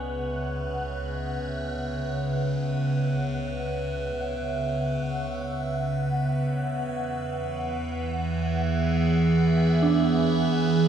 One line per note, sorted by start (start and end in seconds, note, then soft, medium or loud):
0.00 6.83 C#2 medium
0.00 6.89 C#3 medium
0.00 1.25 B3 medium
0.00 10.88 B3 medium
0.00 10.31 B4 medium
0.00 0.92 C#5 medium
0.00 10.65 C#5 medium
0.00 10.88 E5 medium
0.00 10.88 F#5 medium
0.00 2.69 G#5 medium
6.88 10.88 E2 medium
6.88 10.88 E3 medium
7.50 10.88 B3 medium
8.28 10.88 G#4 medium
9.82 10.88 D4 medium